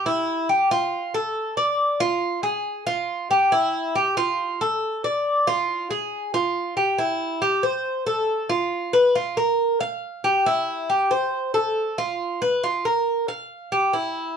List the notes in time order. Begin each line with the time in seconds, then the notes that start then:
0.06 E4
0.49 G4
0.71 F4
1.14 A4
1.57 D5
2.00 F4
2.43 G#4
2.87 F4
3.31 G4
3.52 E4
3.95 G4
4.17 F4
4.61 A4
5.04 D5
5.47 F4
5.91 G#4
6.34 F4
6.77 G4
6.98 E4
7.42 G4
7.63 C5
8.07 A4
8.49 F4
8.93 B4
9.15 F4
9.37 A#4
9.80 F5
10.24 G4
10.46 E4
10.90 G4
11.11 C5
11.54 A4
11.98 F4
12.42 B4
12.64 F4
12.85 A#4
13.28 F5
13.72 G4
13.93 E4